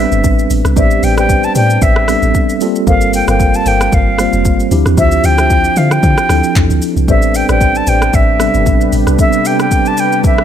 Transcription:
Already playing: G3 B3 A4 E5, impact
0.00 C4 D4 B4
0.12 G1, shaker
0.24 A1, kick, shaker
0.39 shaker
0.50 A1, open hi-hat, shaker
0.65 C2, cross-stick, shaker
0.76 A1 G3 B3 C4 D4 G4 B4 C5 D5 E5, kick, shaker
0.91 shaker
1.03 A1 G5, open hi-hat, shaker
1.17 G4 B4 C5 D5 G5, cross-stick, shaker
1.29 kick, shaker
1.43 A5, shaker
1.55 A2 G4 B4 C5 D5 G5, open hi-hat, shaker
1.70 shaker
1.82 A1 E5, kick, shaker
1.96 cross-stick
2.08 G3 B3 C4 D4 A4, cross-stick, open hi-hat, shaker
2.22 A1, shaker
2.34 kick, shaker
2.49 shaker
2.61 G3 A#3 C4 F4 A4, open hi-hat, shaker
2.75 shaker
2.87 G1 A4 A#4 C5 F5, kick, shaker
3.01 shaker
3.13 G5, open hi-hat, shaker
3.28 G1 A4 A#4 C5 F5 G5, cross-stick, shaker
3.40 kick, shaker
3.54 A5, shaker
3.66 G1 A4 A#4 C5 F5 G5, open hi-hat, shaker
3.81 cross-stick, shaker
3.92 G1 F5, kick, shaker
4.18 G3 A#3 C4 F4 C5, cross-stick, open hi-hat, shaker
4.33 F1, shaker
4.45 G1, kick, shaker
4.60 shaker
4.71 D2 F3 C4 D4 E4 G4, open hi-hat, shaker
4.86 E2, cross-stick, shaker
4.97 D2 F4 G4 C5 E5, kick, shaker
5.11 shaker
5.24 D2 G5, open hi-hat, shaker
5.38 F4 G4 C5 E5, cross-stick, shaker
5.50 kick, shaker
5.64 shaker
5.76 D3 F4 G4 C5 E5 F5, open hi-hat, shaker
5.91 G5, cross-stick, shaker
6.03 D3, kick, shaker
6.18 cross-stick, shaker
6.29 D2 F3 C4 D4 E4 A4, cross-stick, open hi-hat, shaker
6.44 shaker
6.56 E2, kick, clap, shaker
6.70 D2, shaker
6.82 open hi-hat, shaker
6.97 C2, shaker
7.08 A1 C3 G3 B3 C4 D4 G4 A4 B4 C5 D5 E5, kick, shaker
7.22 shaker
7.34 G5, open hi-hat, shaker
7.49 A1 G4 B4 C5 D5 G5, cross-stick, shaker
7.61 kick, shaker
7.75 A5, shaker
7.87 A1 G4 B4 C5 D5 G5, open hi-hat, shaker
8.02 cross-stick, shaker
8.13 A1 E5, kick, shaker
8.40 G3 B3 C4 D4 A4, cross-stick, open hi-hat, shaker
8.54 G1, shaker
8.66 A1, kick, shaker
8.81 shaker
8.92 A1, open hi-hat, shaker
9.07 C2, cross-stick, shaker
9.19 G3 B3 C4 D4 A4 E5, kick, shaker
9.33 shaker
9.45 G5, open hi-hat, shaker
9.59 G5, cross-stick, shaker
9.71 kick, shaker
9.85 A5, shaker
9.97 G5, open hi-hat, shaker
10.12 shaker
10.24 E5, kick, shaker
10.38 cross-stick

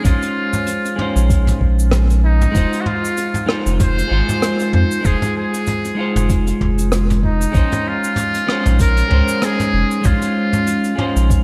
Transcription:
0.02 A#1 G#3 C#4 D#4 F4, kick, closed hi-hat, mid tom, shaker
0.08 C5
0.22 closed hi-hat, shaker
0.53 mid tom, shaker
0.66 closed hi-hat, shaker
0.85 closed hi-hat, shaker
0.96 G#3 C#4 D#4, mid tom
1.01 C5
1.16 A#1, closed hi-hat, shaker
1.30 kick, closed hi-hat, shaker
1.47 closed hi-hat, mid tom, shaker
1.61 A#1, kick
1.79 shaker
1.91 cross-stick, closed hi-hat, mid tom, shaker
2.10 closed hi-hat, shaker
2.25 D#4
2.41 mid tom, shaker
2.51 F1 G#3 D#4, kick, closed hi-hat
2.56 F4 C5, shaker
2.73 closed hi-hat, shaker
2.81 F#4
2.86 F4, mid tom
3.05 shaker
3.17 closed hi-hat, shaker
3.34 closed hi-hat, mid tom, shaker
3.46 G#3 D#4 F4 C5, cross-stick
3.66 F1, closed hi-hat, shaker
3.80 C5, kick, closed hi-hat, mid tom, shaker
3.98 closed hi-hat, shaker
4.08 G#1 G#3 D#4 F4
4.13 C5
4.29 mid tom, shaker
4.42 cross-stick, closed hi-hat, shaker
4.60 closed hi-hat, shaker
4.73 F2 C5, mid tom
4.91 shaker
5.01 G#3 D#4, closed hi-hat, shaker
5.05 F1 F4 G#4 C5, kick
5.22 closed hi-hat, mid tom, shaker
5.37 G#4
5.54 closed hi-hat, shaker
5.66 closed hi-hat, mid tom, shaker
5.85 closed hi-hat, shaker
5.95 G#3 D#4 F4
6.00 C5
6.16 F1, closed hi-hat, mid tom, shaker
6.30 kick, closed hi-hat, shaker
6.47 closed hi-hat, shaker
6.61 F1, kick, mid tom
6.78 closed hi-hat, shaker
6.92 cross-stick, closed hi-hat, shaker
7.10 closed hi-hat, mid tom, shaker
7.23 D#4, kick
7.40 closed hi-hat, shaker
7.52 A#1 G#3 C#4 D#4, kick, closed hi-hat, shaker
7.57 C5
7.72 closed hi-hat, mid tom, shaker
7.88 F4
8.04 shaker
8.16 closed hi-hat, mid tom, shaker
8.34 closed hi-hat, shaker
8.47 G#3 C#4 D#4 C5, cross-stick
8.65 A#1, closed hi-hat, mid tom, shaker
8.79 A#4, kick, closed hi-hat, shaker
8.97 closed hi-hat, shaker
9.08 C#2 G#3 C#4 D#4, mid tom
9.14 C5
9.28 shaker
9.42 G#4, cross-stick, closed hi-hat, shaker
9.60 closed hi-hat, mid tom, shaker
9.73 F1
9.91 shaker
10.01 A#1 G#3 C#4 D#4, kick, closed hi-hat, mid tom, shaker
10.06 F4 C5
10.22 closed hi-hat, shaker
10.53 mid tom, shaker
10.67 closed hi-hat, shaker
10.84 closed hi-hat, shaker
10.95 G#3 C#4 D#4, mid tom
11.01 C5
11.16 A#1, closed hi-hat, shaker
11.30 kick, closed hi-hat, shaker

